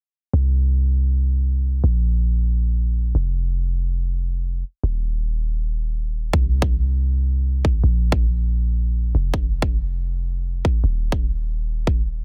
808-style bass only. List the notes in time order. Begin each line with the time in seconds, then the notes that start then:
0.33 C2
1.84 A#1
3.15 F1
4.84 D#1
6.33 C2
7.84 A#1
9.15 F1
10.84 D#1